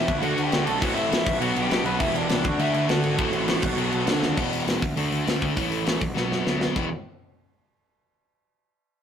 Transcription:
Already playing: E4 E5
0.07 D2 D3 A3 D4 F#4, kick, crash
0.22 D2 D3 A3 D4 F#4 F#5, crash
0.38 D2, crash
0.44 G4 G5
0.51 D2 D3 A3 D4, snare, crash
0.55 F#4
0.66 B1 A4 A5, crash
0.79 A1 A2 E3 A3 F#4 F#5, kick, crash
0.84 C4 E4
0.94 A1 E4 E5, crash
1.11 A1 A2 E3 A3, snare, crash
1.25 B1 B2 F#3 B3 D4 F#4, kick, crash
1.39 B1 B2 F#3 B3 F#4 F#5, crash
1.55 B1, crash
1.62 G4 G5
1.70 B1 B2 F#3 B3 D4 F#4, snare, crash
1.84 B1 B4 B5, crash
1.99 E1 E2 B2 E3 B3 E4 G4 E5, kick, crash
2.14 E1 D4 D5, crash
2.29 C2 E2 B2 E3, snare, crash
2.43 D2 D3 A3 D4 F#4, kick, crash
2.58 D2 D3 A3 D4 E4 E5, crash
2.74 D2 E4 E5, crash
2.87 D2 D3 A3 D4 F#4 F#5, snare, crash
2.92 F#4
3.04 G#1, crash
3.17 A1 A2 E3 A3 C4 E4, kick, crash
3.33 A1, crash
3.47 A1 A2 E3 A3, snare, crash
3.62 B1 B2 F#3 B3 D4, kick, crash
3.77 B1 B2 F#3 B3, crash
3.92 B1, crash
4.06 D2 D3 F#3 A3 D4, snare, crash
4.23 D#2, snare
4.37 E1 E2 B2 E3, kick, crash
4.52 E1, open hi-hat
4.67 E1 E2 B2 E3, snare, open hi-hat
4.82 D2, kick, open hi-hat
4.96 D2 D3 A3 D4, open hi-hat
5.12 D2, open hi-hat
5.25 D2 D3 A3 D4, snare, open hi-hat
5.42 kick, open hi-hat
5.56 A1 A2 E3 A3, kick, open hi-hat
5.71 A1, open hi-hat
5.85 A1 A2 E3 A3, snare, open hi-hat
6.01 B1, kick, open hi-hat
6.14 B1 B2 F#3 B3, snare
6.31 F#2, snare
6.44 D2 B2 F#3 B3, snare
6.61 snare
6.75 E1 E2 B2 E3, kick, crash

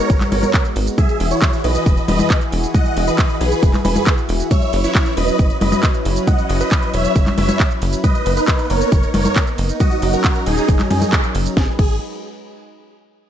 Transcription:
Already playing: G#3 B3 D#4 F#4 A#4 C#5
0.10 G#1, kick, closed hi-hat, ride, shaker
0.21 clap, closed hi-hat, high conga, shaker
0.32 G#1 A#4 C#5, open hi-hat, ride, high conga
0.43 closed hi-hat, high conga, shaker
0.54 kick, clap, closed hi-hat, ride, shaker
0.65 closed hi-hat, shaker
0.76 G#1, open hi-hat, ride
0.87 closed hi-hat, shaker
0.98 E3 E4 F#4 G#4 E5, kick, closed hi-hat, ride, high conga, shaker
1.09 closed hi-hat, shaker
1.20 E1, open hi-hat, ride
1.31 E4 C#5, closed hi-hat, shaker
1.42 kick, clap, closed hi-hat, ride, shaker
1.53 closed hi-hat, shaker
1.64 B1 B4 D#5, open hi-hat, ride
1.75 closed hi-hat, shaker
1.86 E1, kick, closed hi-hat, ride, shaker
1.97 closed hi-hat, shaker
2.08 E1 B4 D#5, open hi-hat, ride, high conga
2.19 closed hi-hat, high conga, shaker
2.30 kick, clap, closed hi-hat, ride, shaker
2.41 closed hi-hat, shaker
2.52 E1, open hi-hat, ride
2.64 closed hi-hat, shaker
2.74 D#5 F#5, kick, closed hi-hat, ride, high conga, shaker
2.86 closed hi-hat, shaker
2.97 E1, open hi-hat, ride
3.08 B4 D#5, closed hi-hat, shaker
3.19 kick, clap, closed hi-hat, ride, shaker
3.30 closed hi-hat, shaker
3.40 B1 G#4 B4, open hi-hat, ride
3.52 closed hi-hat, shaker
3.63 E1, kick, closed hi-hat, ride, shaker
3.74 clap, closed hi-hat, high conga, shaker
3.85 E1 G#4 B4, open hi-hat, ride, high conga
3.96 closed hi-hat, high conga, shaker
4.07 kick, clap, closed hi-hat, ride, shaker
4.18 closed hi-hat, shaker
4.29 E1, open hi-hat, ride
4.40 closed hi-hat, shaker
4.51 F#3 C#4 B4 C#5 E5, kick, closed hi-hat, ride, high conga, shaker
4.62 closed hi-hat, shaker
4.73 F#1, open hi-hat, ride
4.84 E4 C#5, closed hi-hat, shaker
4.95 kick, clap, closed hi-hat, ride, shaker
5.06 closed hi-hat, shaker
5.17 E1 B4 D#5, open hi-hat, ride
5.28 closed hi-hat, shaker
5.39 F#1, kick, closed hi-hat, ride, shaker
5.50 closed hi-hat, shaker
5.61 F#1 B4 D#5, open hi-hat, ride, high conga
5.72 closed hi-hat, high conga, shaker
5.83 kick, clap, closed hi-hat, ride, shaker
5.94 closed hi-hat, shaker
6.05 F#1, open hi-hat, ride
6.16 closed hi-hat, shaker
6.27 D#5 F#5, kick, closed hi-hat, ride, high conga, shaker
6.38 closed hi-hat, shaker
6.49 F#1, open hi-hat, ride
6.61 B4 D#5, closed hi-hat, shaker
6.72 kick, clap, closed hi-hat, ride, shaker
6.83 closed hi-hat, shaker
6.94 E1 C#5 E5, open hi-hat, ride
7.05 closed hi-hat, shaker
7.16 F#1, kick, closed hi-hat, ride, shaker
7.27 clap, closed hi-hat, high conga, shaker
7.38 F#1 C#5 E5, open hi-hat, ride, high conga
7.49 closed hi-hat, high conga, shaker
7.60 kick, clap, closed hi-hat, ride, shaker
7.71 closed hi-hat, shaker
7.82 F#1, open hi-hat, ride
7.93 closed hi-hat, shaker
8.04 A#3 B3 D#4 B4 D#5, kick, closed hi-hat, ride, high conga, shaker
8.15 closed hi-hat, shaker
8.26 F#1, open hi-hat, ride
8.37 D#4 B4, closed hi-hat, shaker
8.48 kick, clap, closed hi-hat, ride, shaker
8.59 closed hi-hat, shaker
8.70 F#1 A#4 C#5, open hi-hat, ride
8.81 closed hi-hat, shaker
8.92 F#1, kick, closed hi-hat, ride, shaker
9.03 closed hi-hat, shaker
9.14 F#1 A#4 C#5, open hi-hat, ride, high conga
9.25 closed hi-hat, high conga, shaker
9.36 kick, clap, closed hi-hat, ride, shaker
9.47 closed hi-hat, shaker
9.58 F#1, open hi-hat, ride
9.69 closed hi-hat, shaker
9.80 F#3 C#4 F#4 A#4 D#5, kick, closed hi-hat, ride, high conga, shaker
9.91 closed hi-hat, shaker
10.02 F#1, open hi-hat, ride
10.13 F#4 A#4, closed hi-hat, shaker
10.24 kick, clap, closed hi-hat, ride, shaker
10.35 closed hi-hat, shaker
10.46 D#1 D#4 G#4, open hi-hat, ride
10.57 closed hi-hat, shaker
10.68 F#1, kick, closed hi-hat, ride, shaker
10.80 clap, closed hi-hat, high conga, shaker
10.91 F#2 D#4 G#4, open hi-hat, ride, high conga
11.02 closed hi-hat, high conga, shaker
11.13 kick, clap, closed hi-hat, ride, shaker
11.24 closed hi-hat, shaker
11.35 F#1, open hi-hat, ride
11.46 closed hi-hat, shaker
11.57 G#1 G#3 D#4 F#4 G#4 B4, kick, snare
11.79 G#1 G#4, kick, crash

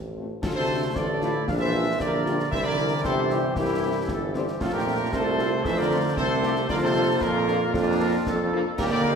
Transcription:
Already playing: A1 F3 C4
0.18 A3 C4 F4
0.42 D2 A2 F3 A3 F4 A4, concert bass drum, snare, crash
0.55 C3 A4 C5
0.69 A3 D4 F4
0.95 A1 D3 F4 A4 D5, concert bass drum, snare
1.21 A3 D4 E4 F4, snare
1.47 A#1 F3 G3 D4 D5 F5, concert bass drum, snare
1.59 E3 C5 E5
1.74 G3 D4 F4
1.99 A#1 D3 G4 A#4 D5, concert bass drum, snare
2.24 G3 D4 F4, snare
2.40 snare
2.52 C2 E3 G3 E4 C5 E5, concert bass drum, snare, crash
2.64 D3 A#4 D5
2.79 G3 C4 E4
3.03 G1 C3 G4 A4 C5, concert bass drum, snare
3.30 G3 C4 E4 G4, snare
3.55 C2 G2 E4 G4, concert bass drum, snare
3.83 G3 C4 E4
4.08 G1 A4, concert bass drum, snare
4.34 G3 C4 E4 G4, snare
4.48 snare
4.60 F2 A2 F3 A3 F4 A4, concert bass drum, snare, crash
4.73 A#2 G4 A#4
4.87 A3 C4 F4
5.12 C2 C3 F4 A4 C5, concert bass drum, snare
5.39 A3 C4 F4 A4, snare
5.63 F2 E3 C5 E5, concert bass drum, snare
5.78 D3 A#4 D5
5.91 A3 C4 F4
6.16 C2 C3 A4 C5, concert bass drum, snare
6.43 A3 C4 F4 G4, snare
6.56 snare
6.69 F2 D3 F3 A#3 F4 A#4 D5, concert bass drum, snare, crash
6.82 C3 A4 C5
6.95 A#3 D4 F4
7.21 F2 A#2 F4 A#4, concert bass drum, snare
7.48 A#3 D4 F4, snare
7.74 F2 D4 F4, concert bass drum, snare
8.00 A#3 D4 F4 A#4
8.26 F2 A4, concert bass drum, snare
8.53 A#3 D4 F4
8.77 D#2 A#2 G3 A#3 G4 A#4, concert bass drum, snare, crash
8.92 D3 A#4 D5
9.05 A#3 D#4 G4

